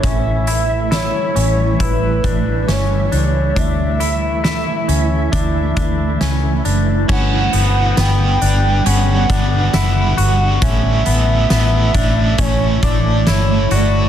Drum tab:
CC |--------|--------|x-------|--------|
HH |xxxxxxxx|xxxxxxxx|-xxxxxxx|xxxxxxxx|
TB |--------|--------|--x---x-|--x---x-|
SD |--o---o-|--o---o-|--o---o-|--o---o-|
BD |o---oo--|o---oo--|o----o--|o--ooo--|